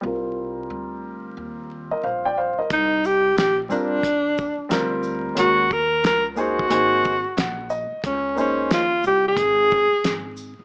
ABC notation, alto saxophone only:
X:1
M:4/4
L:1/16
Q:"Swing 16ths" 1/4=90
K:Cm
V:1 name="Alto saxophone"
z16 | E2 G2 G z D8 z2 | _G2 B2 B z G8 z2 | _D2 D2 F2 G A6- A z2 |]